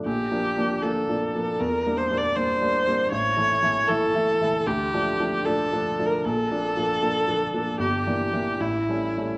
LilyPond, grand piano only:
\new Staff \with { instrumentName = "Grand piano" } { \time 4/4 \key bes \lydian \tempo 4 = 77 \tuplet 3/2 { bes,,8 <f bes d'>8 <f bes d'>8 <f bes d'>8 <f bes d'>8 <f bes d'>8 e,8 <g bes d'>8 <g bes d'>8 <g bes d'>8 <g bes d'>8 <g bes d'>8 } | \tuplet 3/2 { a,,8 <e a e'>8 <e a e'>8 <e a e'>8 <e a e'>8 <e a e'>8 d,8 <f a d'>8 <f a d'>8 <f a d'>8 <f a d'>8 <f a d'>8 } | \tuplet 3/2 { bes,,8 <f bes d'>8 <f bes d'>8 <f bes d'>8 <f bes d'>8 <f bes d'>8 g,,8 <e bes d'>8 <e bes d'>8 a,,8 <g a cis'>8 <g a cis'>8 } | }